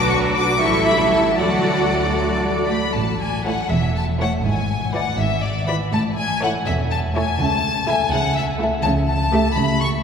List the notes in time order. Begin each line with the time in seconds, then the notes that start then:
Already playing: B1 F#3 D4 F#4 B4
0.10 C#6
0.35 D6
0.59 A1 G3 E4 A4 E5 C#6
0.86 B5
1.12 A5
1.38 D2 F#3 F#4 A4 D5 F#5
2.16 F#3
2.43 G3
2.70 A3 B5
2.93 A1 A2 A5
3.20 G#5
3.45 A3 E4 A4 C#5 F#5
3.71 E1 E2 E5
3.96 A5
4.20 A3 E4 A4 C#5 F#5
4.44 G#1 G#2 G#5
4.94 E3 E4 B4 D5 F#5
5.19 G#1 G#2 E5
5.42 D5
5.67 E3 E4 B4 D5 B5
5.93 A1 A2 A5
6.17 G#5
6.42 A3 E4 A4 C#5 F#5
6.66 E1 E2 E5
6.90 A5
7.15 A3 E4 A4 C#5 G#5
7.39 C#2 C#3 A5
7.88 A3 E4 A4 E5 G#5
8.12 C#2 C#3 F#5
8.35 E5
8.61 A3 E4 A4 E5
8.82 C#2 C#3 A5
9.09 A5
9.33 A3 G4 A4 E5
9.56 C#2 C#3 B5
9.81 C#6